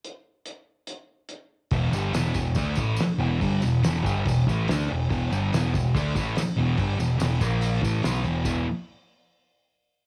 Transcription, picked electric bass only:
\new Staff \with { instrumentName = "Picked electric bass" } { \clef bass \time 4/4 \key e \minor \tempo 4 = 143 r1 | e,,8 g,,8 e,,8 e,,8 d,8 a,,8 r8 e,,8 | g,,8 e,,8 e,,8 g,,8 e,,8 a,,8 d,8 e,,8 | e,,8 g,,8 e,,8 e,,8 d,8 a,,8 r8 e,,8 |
g,,8 e,,8 e,,8 ais,,4 a,,8 b,,8 e,,8 | e,,8 r2. r8 | }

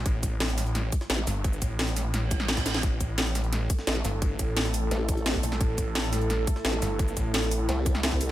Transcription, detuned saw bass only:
\new Staff \with { instrumentName = "Detuned saw bass" } { \clef bass \time 4/4 \key a \minor \tempo 4 = 173 a,,2~ a,,8 r4 g,,8~ | g,,8 a,,4. a,,4. a,,8 | a,,2~ a,,8 r4 g,,8~ | g,,8 a,,4. r4. bes,,8 |
a,,2~ a,,8 r4 g,,8~ | g,,8 a,,4. r2 | }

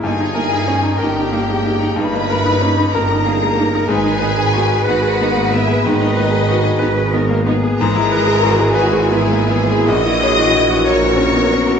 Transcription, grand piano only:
\new Staff \with { instrumentName = "Grand piano" } { \time 12/8 \key dis \phrygian \tempo 4. = 62 g,16 dis'16 ais'16 dis'16 cis'16 dis'16 ais'16 dis'16 ais16 gis16 ais16 dis'16 g,16 ais16 ais'16 dis'16 cis'16 dis'16 ais'16 dis'16 ais16 gis16 ais16 dis'16 | gis,16 dis'16 b'16 gis'16 fis'16 gis'16 b'16 gis'16 b16 ais16 b16 gis'16 dis16 dis'16 b'16 gis'16 fis'16 gis'16 b'16 gis'16 b16 ais16 b16 gis'16 | \key e \lydian gis,16 e'16 b'16 gis'16 fis'16 gis'16 b'16 gis'16 b16 ais16 b16 gis'16 ais,,16 e'16 cis''16 fis'16 e'16 fis'16 cis''16 fis'16 cis'16 b16 cis'16 fis'16 | }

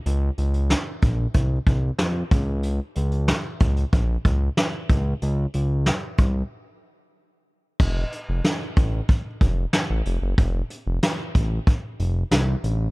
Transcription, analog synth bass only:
\new Staff \with { instrumentName = "Analog synth bass" } { \clef bass \time 4/4 \key f \phrygian \tempo 4 = 93 des,8 des,8. r16 bes,,8 c,8 c,8 f,8 des,8~ | des,8 des,8. r16 des,8 bes,,8 des,8 r8 des,8 | des,8 des,8. r16 c,8 r2 | f,,8 r16 f,,16 r8 a,,8 r8 f,,8 r16 a,,16 f,,16 ges,,16 |
f,,8 r16 f,,16 r8 a,,8 r8 f,,8 c,8 a,,8 | }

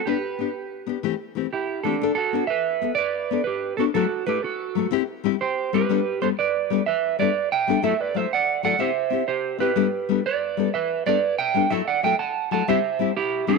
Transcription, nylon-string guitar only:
\new Staff \with { instrumentName = "Nylon-string guitar" } { \time 12/8 \key g \major \tempo 4. = 124 <b d' g'>8 r8 <b d' g'>8 r4 <b d' g'>8 <e a c' g'>8 r8 <e a c' g'>8 r4 <e a c' g'>8 | <d' a'>8 r8 <b d' a'>8 r4 <b a'>8 r4 <b d' a'>8 r4 <b d' a'>8 | <fis a e' a'>8 r8 <a e' a'>8 r4 <fis a a'>8 <c' e' g'>8 r8 <g c' e' g'>8 r4 <g c' e' g'>8 | <g b d' a'>8 r8 <g b d'>8 r4 <g b d' a'>8 r4 <g b d' a'>8 r4 <g b d' a'>8 |
<fis a e' a'>8 r8 <fis a e' a'>8 r4 <fis a e' a'>8 <c' e' g'>8 r8 <c' e' g'>8 r4 <c' e' g'>8 | <g b d' a'>8 r8 <g b d' a'>8 r4 <g b d' a'>8 r4 <g b d' a'>8 r4 <g b d' a'>8 | <fis e' a'>8 r8 <fis a e' a'>8 r4 <fis a e' a'>8 <g c' e' g'>8 r8 <g c' e' g'>8 r4 <g c' e' g'>8 | }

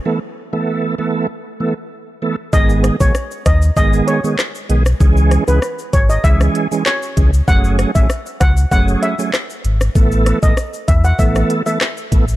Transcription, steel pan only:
\new Staff \with { instrumentName = "Steel pan" } { \time 4/4 \key gis \phrygian \tempo 4 = 97 r1 | dis''8 r16 cis''8 r16 dis''8 dis''16 r16 cis''16 r4 r16 | r8. b'16 r8 cis''16 dis''16 e''8. r16 cis''8. r16 | fis''8 r16 e''8 r16 fis''8 fis''16 r16 e''16 r4 r16 |
r8. dis''16 r8 e''16 fis''16 e''16 r8 e''16 r4 | }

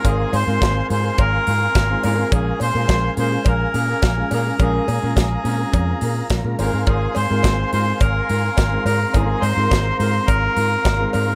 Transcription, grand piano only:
\new Staff \with { instrumentName = "Grand piano" } { \time 4/4 \key aes \major \tempo 4 = 106 <aes c' ees' f' bes'>8. <aes c' ees' f' bes'>8. <aes c' ees' f' bes'>4. r16 <aes c' ees' f' bes'>8. | <aes bes des' f' bes'>8. <aes bes des' f' bes'>8. <aes bes des' f' bes'>4. r16 <aes bes des' f' bes'>8. | <aes bes des' f' bes'>8. <aes bes des' f' bes'>8. <aes bes c' des' f' bes'>4. r16 <aes bes des' f' bes'>16 <aes c' ees' f' a' bes'>8~ | <aes c' ees' f' a' bes'>8 r16 <aes c' ees' f' bes'>8. <aes c' ees' f' bes'>4. r16 <aes c' ees' f' bes'>8. |
<aes c' ees' f' bes'>8. <aes c' ees' f' bes'>8. <aes c' ees' f' bes'>4. r16 <aes c' ees' f' bes'>8. | }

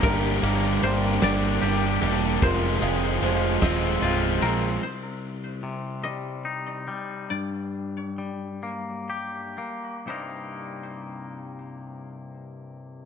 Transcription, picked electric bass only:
\new Staff \with { instrumentName = "Picked electric bass" } { \clef bass \time 6/8 \key c \minor \tempo 4. = 49 g,,8 g,,8 g,,8 g,,8 g,,8 e,,8 | f,,8 f,,8 f,,8 ees,,8 c,,8 bes,,8 | r2. | r2. |
r2. | }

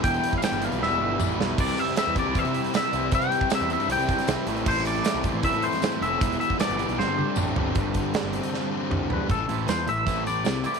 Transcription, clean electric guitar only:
\new Staff \with { instrumentName = "Clean electric guitar" } { \time 4/4 \key a \minor \tempo 4 = 156 g''8.~ g''32 f''32 g''8 f''8 e''4. r8 | d''8 e''8 e''8 d''8 e''4 e''4 | g''4 e''8 e''8 g''4. r8 | c''8 d''4. e''8 c''4 e''8~ |
e''8 e''8 d''4 c''4. r8 | r2. r8 b'8 | a'4 c''8 e''4 d''4 d''8 | }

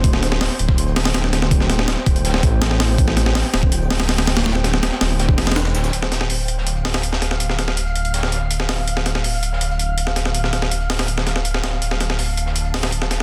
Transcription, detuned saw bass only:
\new Staff \with { instrumentName = "Detuned saw bass" } { \clef bass \time 4/4 \key d \minor \tempo 4 = 163 d,,4 r8 d,,2~ d,,8~ | d,,4 r8 d,,4 a,,4.~ | a,,4 r8 d,,2~ d,,8~ | d,,4 r8 d,,4 e,,4 d,,8 |
d,,1~ | d,,1~ | d,,1~ | d,,1 |
d,,1 | }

